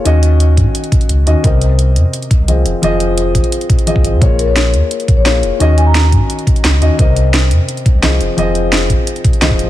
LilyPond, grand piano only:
\new Staff \with { instrumentName = "Grand piano" } { \time 4/4 \key f \phrygian \tempo 4 = 173 <ees des' ges' ees''>2.~ <ees des' ges' ees''>8 <ees des' ges' ees''>8 | <c c' bes' ees''>2. <f c' aes' ees''>4 | <f c' aes' ees''>2. <f c' aes' ees''>4 | <bes f' aes' des''>2. <bes f' aes' des''>4 |
<ees des' ges' ees''>2.~ <ees des' ges' ees''>8 <ees des' ges' ees''>8 | <c c' bes' ees''>2. <f c' aes' ees''>4 | <f c' aes' ees''>2. <f c' aes' ees''>4 | }